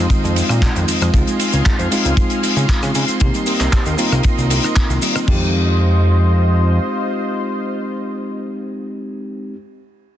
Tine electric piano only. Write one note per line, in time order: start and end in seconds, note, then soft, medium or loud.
0.00 1.11 G#3 loud
0.00 1.11 C4 medium
0.00 1.11 D#4 medium
0.00 1.12 F4 loud
1.13 1.88 G#3 medium
1.13 1.89 C4 medium
1.13 1.89 D#4 medium
1.13 1.89 F4 medium
1.91 3.18 G#3 loud
1.91 3.18 C4 medium
1.91 3.18 D#4 medium
1.91 3.19 F4 loud
3.20 3.95 A#3 medium
3.20 3.95 C4 medium
3.20 3.96 D#4 medium
3.20 3.96 G4 medium
3.97 5.24 A#3 loud
3.97 5.25 C4 medium
3.97 5.25 D#4 medium
3.97 5.25 F4 loud
5.26 9.53 G#3 medium
5.26 9.54 C4 medium
5.26 9.55 D#4 medium
5.26 9.56 G4 loud